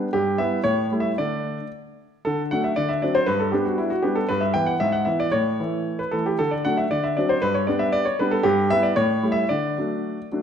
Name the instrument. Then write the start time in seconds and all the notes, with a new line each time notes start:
grand piano
0.13 G2 G4
0.38 G3 B3 E4 E5
0.64 A2 C#5
0.92 G3 A3 E4
1.00 E5
1.18 D3 A3 D4 D5
2.25 D3 A4
2.51 F#3 A3 D4 F#5
2.64 E5
2.76 D3 D5
2.89 E5
3.02 F#3 C4 D4 D5
3.15 C5
3.26 G2 B4
3.40 A4
3.52 G3 B3 D4 G4
3.65 F#4
3.78 E4
3.90 F#4
4.02 G3 B3 D4 G4
4.15 A4
4.29 G2 B4
4.41 E5
4.54 E3 B3 E4 G5
4.66 F#5
4.80 G#2 E5
4.92 F#5
5.05 E3 B3 E4 E5
5.20 D5
5.32 A2 C#5
5.60 E3 A3 E4
5.99 B4
6.11 E3 A3 E4 A4
6.26 G4
6.39 D3 A4
6.51 D5
6.65 F#3 A3 D4 F#5
6.77 E5
6.91 D3 D5
7.03 E5
7.17 F#3 C4 D4 D5
7.29 C5
7.42 G2 B4
7.54 C#5
7.67 G3 B3 D4 D5
7.79 E5
7.92 D5
8.05 C#5
8.19 G3 B3 D4 B4
8.31 A4
8.43 G2 G4
8.70 G3 B3 E4 E5
8.83 D5
8.96 A2 C#5
9.23 G3 A3 E4
9.32 E5
9.49 D3 D5
9.78 F#3 A3 D4
10.32 F#3 A3 D4